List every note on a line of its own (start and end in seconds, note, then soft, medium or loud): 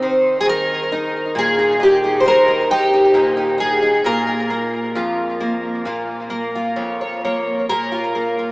0.00 0.44 D#3 medium
0.00 0.42 D#4 soft
0.00 0.42 C5 soft
0.41 0.48 G#4 medium
0.46 2.25 D#3 medium
0.46 1.38 A#4 medium
0.92 1.58 D#4 medium
1.35 2.25 A#2 medium
1.35 1.82 G#4 medium
1.59 1.78 D#4 soft
1.80 2.03 D#4 medium
1.80 2.27 G4 medium
2.04 2.47 D#4 soft
2.20 3.16 C5 medium
2.26 4.05 D#3 medium
2.26 2.71 A#4 medium
2.48 2.70 D#4 medium
2.71 2.92 D#4 medium
2.71 3.60 G4 medium
2.93 3.13 D#4 soft
3.14 4.03 A#2 medium
3.14 3.36 D#4 soft
3.37 3.57 D#4 soft
3.58 3.81 D#4 medium
3.58 4.05 G#4 medium
3.82 4.00 D#4 soft
4.04 4.95 A#2 medium
4.04 4.49 A#3 soft
4.04 4.26 F4 soft
4.04 7.68 A#4 medium
4.27 4.95 F4 soft
4.50 5.39 A#3 medium
4.95 5.86 F2 medium
4.95 5.85 F4 soft
5.40 6.29 A#3 medium
5.85 6.77 A#2 medium
5.85 6.54 F4 soft
6.30 7.23 A#3 medium
6.55 7.65 F4 soft
6.76 7.69 F2 medium
6.76 7.00 C#5 soft
7.01 7.23 C#5 soft
7.25 7.65 A#3 medium
7.25 7.65 C#5 soft
7.69 8.52 A#2 medium
7.69 8.52 A#4 medium
7.92 8.38 F4 soft
8.15 8.52 A#3 medium
8.39 8.52 F4 soft